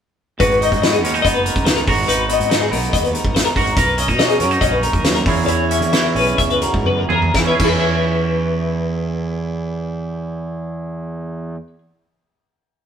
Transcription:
0.39 G#1 G#2 F#4 B4, kick, closed hi-hat
0.51 closed hi-hat
0.61 D#4 D#5, closed hi-hat
0.72 G#2, kick, closed hi-hat
0.82 B3 D#5, snare, closed hi-hat
0.93 G#4, closed hi-hat
1.02 D#2 G#3 C#4 A#4, closed hi-hat
1.14 D#4, closed hi-hat
1.22 F#1 B3 D#5, kick, closed hi-hat
1.34 B4
1.44 A#4, closed hi-hat
1.56 C#2, kick, closed hi-hat
1.65 D#3 B4, snare, closed hi-hat
1.76 A#4, closed hi-hat
1.87 G#1 G#2 F#4 A#4, kick, open hi-hat
2.08 G#1 D#4 B4, closed hi-hat
2.29 B3 D#5, closed hi-hat
2.40 G#2, closed hi-hat
2.49 D#4 D#5, snare, closed hi-hat
2.61 G#4
2.71 B1 B3 A#4, open hi-hat
2.84 closed hi-hat
2.93 D#2 D#5, kick, closed hi-hat
3.04 B4, closed hi-hat
3.11 G#2 A#4, closed hi-hat
3.24 G#1, kick
3.35 B4, snare, closed hi-hat
3.45 A#4
3.56 G#1 G#2 F#4 A#4, kick, open hi-hat
3.67 closed hi-hat
3.76 B1 A#4 B4, kick, closed hi-hat
3.98 C#4 D#5, closed hi-hat
4.08 B2 D#4, kick, closed hi-hat
4.19 C#4 D#5, snare, closed hi-hat
4.29 G#4, closed hi-hat
4.40 F#2 F#3 C#4 A#4, closed hi-hat
4.51 D#4, closed hi-hat
4.61 A#1 C#4 D#5, kick, closed hi-hat
4.72 B4
4.83 A#4, closed hi-hat
4.93 D#2, kick, closed hi-hat
5.04 F#2 B4, snare, closed hi-hat
5.14 A#4, closed hi-hat
5.24 E2 E3 C#4 E4 A#4, kick, open hi-hat
5.29 G#4
5.46 E2 E4 C#5, closed hi-hat
5.70 C#4 E5, closed hi-hat
5.81 E3, closed hi-hat
5.92 E3 E4 E5, snare, closed hi-hat
6.04 A#4
6.15 B1 C#4 B4, open hi-hat
6.27 closed hi-hat
6.38 C#2 E5, kick, closed hi-hat
6.50 B4, closed hi-hat
6.62 B2 A#4, closed hi-hat
6.73 G#2, kick
6.85 F#2 B4, high tom
6.98 A#4
7.08 E2 G#4 A#4, mid tom
7.22 floor tom
7.34 E2 E4, kick, snare
7.39 E3 G#4
7.44 C#4 B4 E5
7.49 E4
7.55 G#4
7.59 E2 E4, kick, crash
7.64 E3 G#4 B4
7.69 C#4 E5
7.74 E4
7.80 G#4

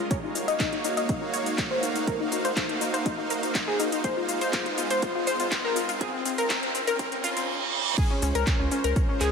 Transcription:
Already playing: riser
0.11 A#3 D#4 F#4 C#5 F5, kick, closed hi-hat, shaker
0.24 D#4
0.35 D#4, open hi-hat, shaker
0.48 D#5, closed hi-hat, shaker
0.60 D#4, kick, clap, closed hi-hat, shaker
0.73 D#4, closed hi-hat
0.84 D#4, open hi-hat, shaker
0.97 D#5, closed hi-hat, shaker
1.09 D#4, kick, closed hi-hat, shaker
1.22 D#4
1.34 C#5, open hi-hat, shaker
1.46 D#4, closed hi-hat, shaker
1.58 D#4, kick, clap, closed hi-hat, shaker
1.71 C5
1.83 D#4, open hi-hat, shaker
1.96 D#4, closed hi-hat, shaker
2.07 A#4 C5, kick, closed hi-hat, shaker
2.20 D#4
2.32 D#4, open hi-hat, shaker
2.45 C5, closed hi-hat, shaker
2.56 D#4, kick, clap, closed hi-hat, shaker
2.69 D#4, closed hi-hat
2.81 D#4, open hi-hat, shaker
2.94 C5, closed hi-hat, shaker
3.06 D#4, kick, closed hi-hat, shaker
3.18 D#4
3.30 A#4, open hi-hat, shaker
3.43 D#4, closed hi-hat, shaker
3.55 D#4, kick, clap, closed hi-hat, shaker
3.68 G#4
3.80 D#4, open hi-hat, shaker
3.92 D#4, closed hi-hat, shaker
4.04 G#3 F4 C5, kick, closed hi-hat, shaker
4.17 F4
4.29 F4, open hi-hat, shaker
4.41 C5, closed hi-hat, shaker
4.53 F4, kick, clap, closed hi-hat, shaker
4.66 F4, closed hi-hat
4.78 F4, open hi-hat, shaker
4.90 C5, closed hi-hat, shaker
5.02 F4, kick, closed hi-hat, shaker
5.15 F4
5.27 C5, open hi-hat, shaker
5.40 F4, closed hi-hat, shaker
5.51 F4, kick, clap, closed hi-hat, shaker
5.65 A#4
5.76 F4, open hi-hat, shaker
5.89 F4, closed hi-hat, shaker
6.01 G#4, kick, closed hi-hat, shaker
6.14 C4
6.25 C4, open hi-hat, shaker
6.38 A#4, closed hi-hat, shaker
6.50 C4, kick, clap, closed hi-hat, shaker
6.63 C4, closed hi-hat
6.75 C4, open hi-hat, shaker
6.87 A#4, closed hi-hat, shaker
6.99 C4, kick, closed hi-hat, reverse cymbal, shaker
7.12 C4, closed hi-hat
7.24 F4, open hi-hat, shaker
7.37 C4, closed hi-hat, shaker
7.98 G#3 C#4 F4 G#4 C5 C#5, kick, closed hi-hat, crash, shaker
8.11 C#4
8.22 C#2 C#4, open hi-hat, shaker
8.35 C#2 A#4, closed hi-hat, shaker
8.47 C#4, kick, clap, closed hi-hat, shaker
8.60 C#2 C#4
8.71 C#4, open hi-hat, shaker
8.84 C#2 A#4, closed hi-hat, shaker
8.96 C#4, kick, closed hi-hat, shaker
9.09 C#4
9.20 C#2 G#4, clap, open hi-hat, shaker

